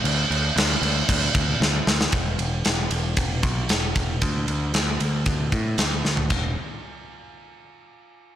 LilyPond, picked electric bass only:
\new Staff \with { instrumentName = "Picked electric bass" } { \clef bass \time 4/4 \key d \mixolydian \tempo 4 = 115 d,8 d,8 d,8 d,8 d,8 d,8 d,8 d,8 | e,,8 e,,8 e,,8 e,,8 e,,8 b,,8 e,,8 e,,8 | d,8 d,8 d,8 d,8 d,8 a,8 d,8 d,8 | e,,8 r2. r8 | }